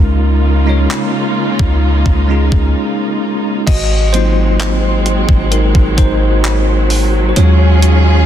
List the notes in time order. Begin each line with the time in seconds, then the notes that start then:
Already playing: C#3 G#3 A#3 C#4 D#4 F4 A#4
0.00 C#2
0.66 G#3 C#4 D#4 F4 C#5
0.91 clap
1.59 C#2, kick
2.06 C#2, kick
2.28 G#3 C#4 D#4 F4 G#4
2.52 C#2, kick
3.67 G#1 F#3 G#3 C4 F#4 D#5, kick, closed hi-hat, crash
4.13 F#3 A#3 C4 D#4 F4 C5, closed hi-hat
4.60 clap, closed hi-hat
5.06 closed hi-hat
5.29 G#1, kick
5.52 D#4 A#4, closed hi-hat
5.75 G#1, kick
5.97 G#1 D#4 C5, kick, closed hi-hat
6.44 clap, closed hi-hat
6.90 open hi-hat
7.29 C5
7.36 D#2 D#3 F#3 G#3 C#4 F4 G#4 C#5, closed hi-hat
7.82 closed hi-hat